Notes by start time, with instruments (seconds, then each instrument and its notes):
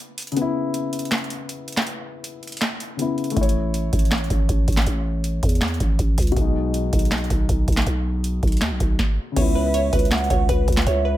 Already playing: grand piano C#3 B3 E4
0.18 closed hi-hat, open hi-hat
0.22 closed hi-hat
0.27 closed hi-hat
0.32 grand piano C#3, closed hi-hat
0.37 grand piano B3, closed hi-hat
0.41 grand piano E4
0.74 closed hi-hat
0.93 closed hi-hat
0.99 closed hi-hat
1.05 closed hi-hat
1.12 snare, clap, closed hi-hat
1.18 closed hi-hat
1.24 closed hi-hat
1.30 closed hi-hat
1.49 closed hi-hat
1.68 closed hi-hat
1.73 closed hi-hat
1.77 snare, clap, closed hi-hat
1.82 closed hi-hat
1.87 closed hi-hat
2.24 closed hi-hat
2.43 closed hi-hat
2.47 closed hi-hat
2.52 closed hi-hat
2.57 closed hi-hat
2.62 snare, clap, closed hi-hat
2.80 closed hi-hat
2.97 grand piano C#3 B3, closed hi-hat
3.02 grand piano E4
3.18 closed hi-hat
3.24 closed hi-hat
3.30 grand piano A3, closed hi-hat
3.36 808-style bass A1, grand piano E4, kick, closed hi-hat
3.41 grand piano C#5, closed hi-hat
3.49 closed hi-hat
3.74 closed hi-hat
3.93 808-style bass A1, kick, closed hi-hat
3.99 closed hi-hat
4.05 closed hi-hat
4.12 snare, clap, closed hi-hat
4.18 closed hi-hat
4.24 closed hi-hat
4.30 808-style bass A1, kick, closed hi-hat
4.49 808-style bass A1, kick, closed hi-hat
4.68 808-style bass A1, kick, closed hi-hat
4.72 closed hi-hat
4.77 snare, clap, closed hi-hat
4.82 closed hi-hat
4.87 808-style bass A1, closed hi-hat
5.24 closed hi-hat
5.43 808-style bass E2, kick, closed hi-hat
5.49 closed hi-hat
5.55 closed hi-hat
5.62 snare, clap, closed hi-hat
5.68 closed hi-hat
5.74 closed hi-hat
5.80 808-style bass A1, kick, closed hi-hat
5.99 808-style bass A1, kick, closed hi-hat
6.18 808-style bass C#2, kick, closed hi-hat, open hi-hat
6.22 closed hi-hat
6.27 closed hi-hat
6.32 grand piano B2, closed hi-hat
6.37 808-style bass B1, grand piano G#3, kick, closed hi-hat
6.41 grand piano D#4
6.74 closed hi-hat
6.93 808-style bass B1, kick, closed hi-hat
6.99 closed hi-hat
7.05 closed hi-hat
7.12 snare, clap, closed hi-hat
7.18 closed hi-hat
7.24 closed hi-hat
7.30 808-style bass B1, kick, closed hi-hat
7.49 808-style bass B1, kick, closed hi-hat
7.68 808-style bass B1, kick, closed hi-hat
7.72 closed hi-hat
7.77 snare, clap, closed hi-hat
7.82 closed hi-hat
7.87 808-style bass B1, closed hi-hat
8.24 closed hi-hat
8.43 808-style bass B1, kick, closed hi-hat
8.47 closed hi-hat
8.52 closed hi-hat
8.57 closed hi-hat
8.62 808-style bass D#2, snare, clap, closed hi-hat
8.71 808-style bass B1
8.80 808-style bass B1, kick, closed hi-hat
8.99 kick, snare
9.32 grand piano C#3
9.36 808-style bass C#2, grand piano B3, synth pluck C#5, soft synth lead E5, kick, closed hi-hat, crash
9.41 grand piano E4
9.55 synth pluck B4
9.74 synth pluck C#5, closed hi-hat
9.93 808-style bass C#2, synth pluck B4, kick, closed hi-hat
9.99 closed hi-hat
10.05 closed hi-hat
10.11 soft synth lead F#5, snare, clap, closed hi-hat
10.18 closed hi-hat
10.24 closed hi-hat
10.30 808-style bass C#2, synth pluck C#5, kick, closed hi-hat
10.49 808-style bass C#2, synth pluck B4, kick, closed hi-hat
10.68 808-style bass C#2, kick, closed hi-hat
10.72 closed hi-hat
10.77 snare, clap, closed hi-hat
10.82 closed hi-hat
10.87 808-style bass C#2, synth pluck C#5, soft synth lead E5, closed hi-hat
11.05 synth pluck B4